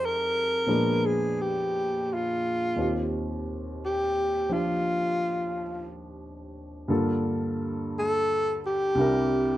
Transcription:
Already playing: F2 F3 G#3 D#4 G4
0.05 A#4
0.66 A#2 F3 G#3 B3 D4
1.06 G#4
1.41 G4
2.14 F4
2.76 D#2 D#3 C4 F4
2.81 G4
3.85 G4
4.49 F3 D4 F4 G4
6.88 G2 D3 A#3 F4 A4
7.99 A4
8.66 G4
8.95 C2 C3 D4
9.00 E4 A#4

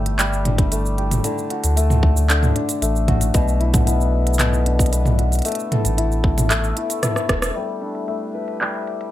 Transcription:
Already playing: G1 D3 G3 A3 B3 E4 G4 A4
0.06 closed hi-hat
0.19 G3, clap, closed hi-hat, shaker
0.33 shaker
0.45 D4, closed hi-hat, mid tom
0.58 kick, closed hi-hat
0.72 A3, closed hi-hat, shaker
0.86 shaker
0.98 G4, closed hi-hat
1.11 closed hi-hat, mid tom, shaker
1.24 D3, closed hi-hat, shaker
1.38 shaker
1.50 F#4, closed hi-hat
1.64 D2, closed hi-hat, shaker
1.77 A3, closed hi-hat, shaker
1.90 mid tom, shaker
2.03 kick
2.17 shaker
2.29 D3, clap, closed hi-hat, shaker
2.43 mid tom, shaker
2.56 D4, closed hi-hat
2.69 closed hi-hat, shaker
2.82 A1 A3, closed hi-hat, shaker
2.96 shaker
3.08 F#4, kick, closed hi-hat, mid tom
3.21 closed hi-hat, shaker
3.34 B1 B2, kick, closed hi-hat, shaker
3.48 shaker
3.60 E4, closed hi-hat
3.74 F#4, kick, closed hi-hat, mid tom, shaker
3.87 B3, closed hi-hat, shaker
4.01 shaker
4.27 closed hi-hat
4.34 shaker
4.39 B2, clap, closed hi-hat, mid tom, shaker
4.54 shaker
4.66 D4, closed hi-hat
4.79 kick, shaker
4.86 closed hi-hat
4.92 B3, closed hi-hat, shaker
5.06 mid tom, shaker
5.18 F#4, closed hi-hat
5.32 closed hi-hat, shaker
5.35 closed hi-hat
5.39 closed hi-hat
5.42 closed hi-hat
5.45 A3, closed hi-hat, shaker
5.48 closed hi-hat
5.52 closed hi-hat
5.55 closed hi-hat
5.59 shaker
5.72 A4, closed hi-hat, mid tom
5.85 A1, closed hi-hat, shaker
5.97 E4, closed hi-hat
6.12 shaker
6.24 kick
6.38 closed hi-hat, mid tom, shaker
6.50 A3, clap, closed hi-hat, shaker
6.64 shaker
6.77 E4, closed hi-hat
6.90 closed hi-hat, shaker
7.03 E4, cross-stick, closed hi-hat, mid tom, shaker
7.16 cross-stick, shaker
7.29 E1 A4, kick, cross-stick, closed hi-hat
7.42 cross-stick, closed hi-hat, shaker
7.56 G3, closed hi-hat
7.82 D4, closed hi-hat
7.95 closed hi-hat
8.08 A3, closed hi-hat
8.35 B4
8.48 closed hi-hat
8.61 G3, clap, closed hi-hat
8.87 closed hi-hat
9.01 closed hi-hat

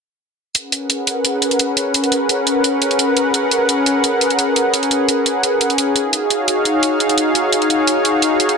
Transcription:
0.55 C#4 G#4 A#4 B4 F#5, closed hi-hat
0.72 closed hi-hat
0.90 closed hi-hat
1.07 closed hi-hat
1.25 closed hi-hat
1.42 closed hi-hat
1.51 closed hi-hat
1.59 closed hi-hat
1.77 closed hi-hat
1.94 closed hi-hat
2.04 closed hi-hat
2.12 closed hi-hat
2.29 closed hi-hat
2.47 closed hi-hat
2.64 closed hi-hat
2.82 closed hi-hat
2.91 closed hi-hat
2.99 closed hi-hat
3.17 closed hi-hat
3.34 closed hi-hat
3.51 closed hi-hat
3.69 closed hi-hat
3.86 closed hi-hat
4.04 closed hi-hat
4.21 closed hi-hat
4.30 closed hi-hat
4.39 closed hi-hat
4.56 closed hi-hat
4.74 closed hi-hat
4.83 closed hi-hat
4.91 closed hi-hat
5.09 closed hi-hat
5.26 closed hi-hat
5.43 closed hi-hat
5.61 closed hi-hat
5.70 closed hi-hat
5.78 closed hi-hat
5.96 D#4 F#4 C#5 F5, closed hi-hat
6.13 closed hi-hat
6.30 closed hi-hat
6.48 closed hi-hat
6.65 closed hi-hat
6.83 closed hi-hat
7.00 closed hi-hat
7.09 closed hi-hat
7.18 closed hi-hat
7.35 closed hi-hat
7.53 closed hi-hat
7.62 closed hi-hat
7.70 closed hi-hat
7.87 closed hi-hat
8.05 closed hi-hat
8.22 closed hi-hat
8.40 closed hi-hat
8.49 closed hi-hat

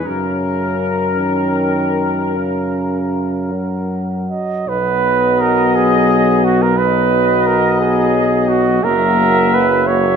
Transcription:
0.04 F#2 C#3 C#4 A#4
1.19 D#3
2.36 C#3
3.52 F#3
4.29 D#5
4.66 B1 F#3 B3 B4 D#5
5.40 A#4
5.75 G#4
6.44 F#4
6.62 A#4
6.77 F#3 B3 B4 D#5
7.47 A#4
7.80 G#4
8.48 F#4
8.82 F#1 F#3 A#3 A#4 E5
9.54 B4
9.86 F#3 A#3 C#5 E5

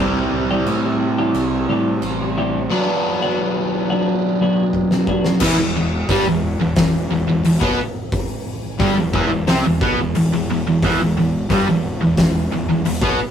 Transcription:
Already playing: C2 C3
0.00 E3 G3 C4 D4 E4 G4
0.16 muted clean electric guitar stroke
0.32 C2
0.51 E3 G3 D4 G4
0.66 A2, muted clean electric guitar stroke, crash
0.85 muted clean electric guitar stroke
1.18 E3 G3 D4 G4
1.34 C2, crash
1.68 A2 E3 G3 D4 G4
2.02 A1, crash
2.21 muted clean electric guitar stroke
2.38 E3 G3 D4 G4
2.70 B2 F#3 B3 D4 F#4
2.89 muted clean electric guitar stroke
3.22 F#3 B3 D4 F#4
3.40 muted clean electric guitar stroke
3.57 muted clean electric guitar stroke
3.90 F#3 B3 D4 F#4
4.41 F#3 B3 D4 F#4
4.73 kick
4.91 muted clean electric guitar stroke, snare
5.07 F#3 B3 D4 F#4, kick
5.25 snare
5.40 E1 E2 E3, kick, crash
5.58 E1 E2
5.75 E1 E2
6.09 G1 G2 G3, kick, open hi-hat
6.26 E1 E2
6.60 E1 E2
6.76 E1 E2, kick, snare, open hi-hat
7.11 E1 E2
7.27 E1 E2
7.43 E1 E2, open hi-hat
7.60 B1 B2 B3, kick
8.12 kick, open hi-hat
8.79 G1 G2 G3, kick, open hi-hat
8.97 E1 E2
9.13 E1 E2 E3, kick
9.30 E1 E2
9.47 C2 C3 C4, snare, open hi-hat
9.65 E1 E2
9.81 B1 B2 B3, kick
9.99 E1 E2
10.15 E1 E2, open hi-hat
10.33 E1 E2
10.50 E1 E2
10.66 E1 E2
10.83 E1 E2 E3, kick, open hi-hat
11.01 E1 E2
11.17 E1 E2
11.50 G1 G2 G3, kick, open hi-hat
11.68 E1 E2
12.02 E1 E2
12.17 E1 E2, kick, snare, open hi-hat
12.52 E1 E2
12.69 E1 E2
12.85 E1 E2, open hi-hat
13.02 B1 B2 B3, kick

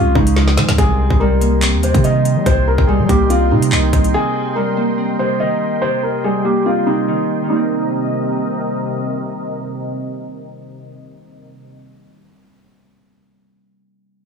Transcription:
Already playing: C#3 F3 G#3 C4 C#4 F4 G#4 F5 C6
0.00 C2
0.15 C#2 C#3 D#4, kick
0.27 closed hi-hat
0.36 F3, snare
0.48 snare
0.57 F3, snare, closed hi-hat
0.69 C#2, snare, closed hi-hat
0.78 C2 C3 G#4 A#4 D#5 G5 C6, kick, closed hi-hat
1.10 C2, kick
1.20 G3 A#4
1.41 A#3, closed hi-hat
1.62 C4, clap, closed hi-hat
1.73 D#2
1.83 C3 C5, closed hi-hat
1.94 C3, kick, closed hi-hat
2.04 D#3 D#5, closed hi-hat
2.25 closed hi-hat
2.36 G3
2.46 C2 C3 C5, kick, closed hi-hat
2.68 A#4
2.78 C2, kick
2.87 G3 G#4
2.99 G3
3.09 C2 A#3 G4, kick, closed hi-hat
3.30 C4 F4, closed hi-hat
3.51 C3 D#4
3.62 closed hi-hat
3.72 C2 D#3, clap
3.93 C2, kick, closed hi-hat
4.04 closed hi-hat
4.14 C3 G#4
4.56 G3 A#4
4.77 A#3
4.98 C4
5.19 C3 C5
5.40 D#3 D#5
5.82 C3 C5
6.03 A#4
6.24 G3 G#4
6.45 A#3 G4
6.66 C4 F4
6.87 C3 D#4
7.08 D#3
7.44 D#3
7.48 C3 G3 C4 D#4 A#4 D#5
7.52 A#3
7.56 C4

